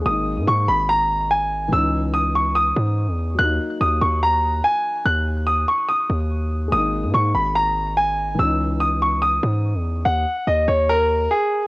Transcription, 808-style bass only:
X:1
M:4/4
L:1/16
Q:1/4=144
K:Ebphr
V:1 name="808-style bass" clef=bass
A,,,3 A,, A,,2 A,,,8- A,,,2 | D,,8- D,,2 A,,3 F,,3 | E,,2 z2 E,,2 E,,6 z4 | E,,6 z4 E,,6 |
A,,,3 A,, A,,2 A,,,8- A,,,2 | D,,8- D,,2 A,,3 F,,3 | E,,2 z2 E,,2 E,,6 z4 |]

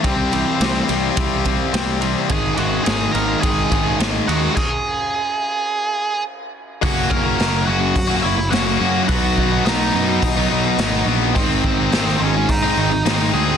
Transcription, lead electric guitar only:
X:1
M:4/4
L:1/8
Q:1/4=106
K:F#mix
V:1 name="Lead electric guitar"
[=C=c]3 z4 z | [Gg] [Ff] [Gg] [Aa] [Gg]2 z [Ff] | [Gg]6 z2 | [Ff] [Aa]2 [Ff]2 [Ee] [Ff]2 |
[Ff]2 [Dd]4- [Dd] z | [^B,^B]3 [Cc] [Dd]3 [Gg] |]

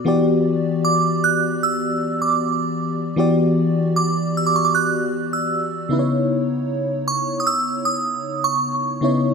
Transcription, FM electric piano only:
X:1
M:4/4
L:1/8
Q:1/4=77
K:Edor
V:1 name="FM electric piano"
[E,B,FGd]8 | [E,B,FGd]6- [E,B,FGd] [C,B,^DEBc]- | [C,B,^DEBc]6- [C,B,DEBc] [C,B,DEc] |]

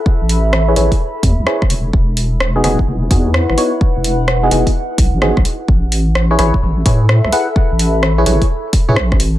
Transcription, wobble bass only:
X:1
M:4/4
L:1/16
Q:"Swing 16ths" 1/4=128
K:Alyd
V:1 name="Wobble bass" clef=bass
z A,,,4- A,,, A,,, z3 E,, C,, z2 E,,,2 | E,,,6 E,,, z E,,,2 E,,3 G,,, z2 | z E,,,4- E,,, E,,, z3 B,,, G,,,2 B,,, z2 | A,,,6 A,,, z A,,,2 A,,3 C,, z2 |
z A,,,4- A,,, A,,, z4 A,, A,,,4 |]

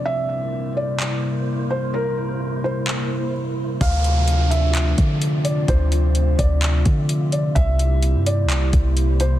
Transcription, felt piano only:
X:1
M:4/4
L:1/8
Q:1/4=128
K:Dm
V:1 name="Felt piano"
e3 d4 c | B3 c3 z2 | f3 e4 d | c3 d4 d |
e3 d4 c |]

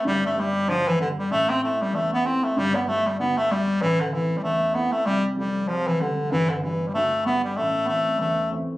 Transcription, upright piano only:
X:1
M:4/4
L:1/8
Q:"Swing" 1/4=192
K:Am
V:1 name="Upright piano" clef=bass
[G,,,G,,]2 [G,B,D]2 D,,2 [G,B,D]2 | [A,,,A,,]2 [A,CE]2 E,,2 [A,CE]2 | [G,,,G,,]2 [G,B,D]2 D,,2 [G,B,D]2 | [A,,,A,,]2 [A,CE]2 E,,2 [A,CE]2 |
[F,,,F,,]2 [F,G,A,]2 C,,2 [F,G,A,]2 | [G,,,G,,]2 [D,G,B,]2 D,,2 [D,G,B,]2 | [A,,,A,,]2 [E,A,C]2 E,,2 [E,A,C]2 |]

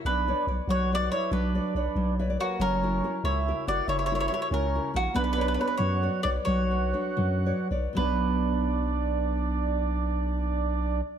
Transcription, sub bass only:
X:1
M:6/8
L:1/8
Q:3/8=93
K:Bm
V:1 name="Sub bass" clef=bass
B,,,2 B,,, B,,,3 | B,,,2 B,,, B,,,3 | F,,,3 C,,2 F,,, | F,,,3 C,,2 ^A,,, |
B,,,3 F,,2 B,,, | B,,,3 F,,2 B,,, | B,,,6- | B,,,6 |]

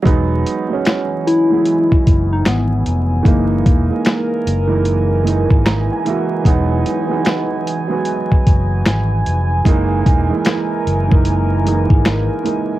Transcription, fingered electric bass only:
X:1
M:4/4
L:1/16
Q:"Swing 16ths" 1/4=75
K:Elyd
V:1 name="Fingered electric bass" clef=bass
E,,,2 z8 F,,,2 G,,,2 =F,,,2 | F,,,2 E,,, z3 F,,,4- F,,, G,,,2 z3 | E,,,2 z8 F,,,2 G,,,2 =F,,,2 | F,,,2 E,,, z3 F,,,4- F,,, G,,,2 z3 |]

